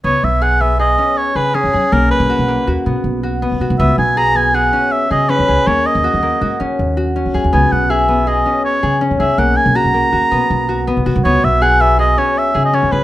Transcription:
<<
  \new Staff \with { instrumentName = "Oboe" } { \time 5/4 \key cis \dorian \tempo 4 = 161 cis''8 e''8 fis''8 e''8 dis''4 cis''8 b'8 gis'4 | ais'8 b'2 r2 r8 | e''8 gis''8 ais''8 gis''8 fis''4 e''8 dis''8 b'4 | cis''8 dis''2 r2 r8 |
gis''8 fis''8 e''4 dis''4 cis''4 r8 e''8 | fis''8 gis''8 ais''2. r4 | cis''8 e''8 fis''8 e''8 dis''8 cis''8 e''8. dis''16 cis''8 b'8 | }
  \new Staff \with { instrumentName = "Harp" } { \time 5/4 \key cis \dorian b4 gis'8 b8 gis'8 cis'4 gis'8 cis'8 gis'8 | ais4 fis'8 ais8 fis'8 b4 fis'8 b8 fis'8 | b4 gis'8 b8 gis'8 cis'4 gis'8 cis'8 gis'8 | ais4 fis'8 ais8 fis'8 cis'4 fis'8 cis'8 gis'8 |
b4 gis'8 b8 gis'8 cis'4 gis'8 cis'8 gis'8 | ais4 fis'8 ais8 fis'8 b4 fis'8 b8 fis'8 | b4 gis'8 b8 gis'8 cis'4 gis'8 cis'8 gis'8 | }
  \new Staff \with { instrumentName = "Upright bass" } { \clef bass \time 5/4 \key cis \dorian cis,8 b,,2 r4 cis8. e,16 fis,16 r16 | b,,8 r16 b,,8 b,,8 r16 dis,16 r16 b,16 r16 b,,4~ b,,16 b,,16 b,,16 b,,16 | cis,8 b,,2 r4 cis8. e,16 cis,16 r16 | dis,8 r16 dis,8 dis,8 r16 gis,16 r16 dis16 r16 dis,4~ dis,16 dis,16 dis,16 dis,16 |
cis,8 b,,2 r4 cis8. e,16 cis,16 r16 | b,,8 r16 b,,8 b,,8 r16 dis,16 r16 b,16 r16 b,,4~ b,,16 b,,16 b,,16 b,,16 | cis,8 b,,2 r4 cis8. e,16 cis,16 r16 | }
>>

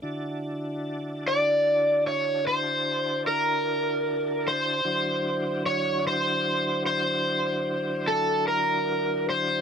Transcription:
<<
  \new Staff \with { instrumentName = "Electric slide guitar" } { \time 12/8 \key d \dorian \tempo 4. = 50 r4. d''4 cis''8 c''4 bes'4. c''8~ | c''4 cis''8 c''4 c''4. a'8 bes'4 c''8 | }
  \new Staff \with { instrumentName = "Tonewheel organ" } { \time 12/8 \key d \dorian <d d' e' fis' a''>1. | <d fis d' e' fis'>1. | }
>>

